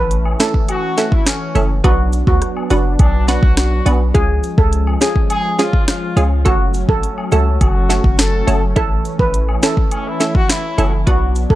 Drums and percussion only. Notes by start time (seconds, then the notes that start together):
0.11 closed hi-hat
0.25 high woodblock
0.40 cross-stick, snare, closed hi-hat, cabasa
0.54 kick
0.69 closed hi-hat, high woodblock
0.97 snare, closed hi-hat, cabasa
1.12 kick
1.27 cross-stick, snare, closed hi-hat
1.55 closed hi-hat, cabasa, high woodblock
1.84 kick, closed hi-hat
2.13 closed hi-hat, cabasa
2.27 kick
2.42 cross-stick, closed hi-hat
2.57 high woodblock
2.70 closed hi-hat, cabasa
2.99 kick, closed hi-hat, high woodblock
3.28 snare, closed hi-hat, cabasa
3.43 kick
3.57 cross-stick, snare, closed hi-hat
3.86 closed hi-hat, cabasa, high woodblock
4.15 kick, closed hi-hat
4.43 closed hi-hat, cabasa
4.58 kick
4.73 closed hi-hat
4.87 high woodblock
5.01 cross-stick, snare, closed hi-hat, cabasa
5.16 kick
5.30 closed hi-hat, high woodblock
5.59 snare, closed hi-hat, cabasa
5.73 kick
5.88 cross-stick, snare, closed hi-hat
6.17 closed hi-hat, cabasa, high woodblock
6.46 kick, closed hi-hat
6.74 closed hi-hat, cabasa
6.89 kick
7.03 closed hi-hat
7.18 high woodblock
7.32 closed hi-hat, cabasa
7.61 kick, closed hi-hat, high woodblock
7.90 snare, closed hi-hat, cabasa
8.04 kick
8.19 cross-stick, snare, closed hi-hat
8.48 closed hi-hat, cabasa, high woodblock
8.76 kick, closed hi-hat
9.05 closed hi-hat, cabasa
9.19 kick
9.34 closed hi-hat
9.49 high woodblock
9.62 cross-stick, snare, closed hi-hat, cabasa
9.77 kick
9.91 closed hi-hat, high woodblock
10.20 snare, closed hi-hat, cabasa
10.35 kick
10.49 cross-stick, snare, closed hi-hat
10.78 closed hi-hat, cabasa, high woodblock
11.07 kick, closed hi-hat
11.35 closed hi-hat, cabasa
11.50 kick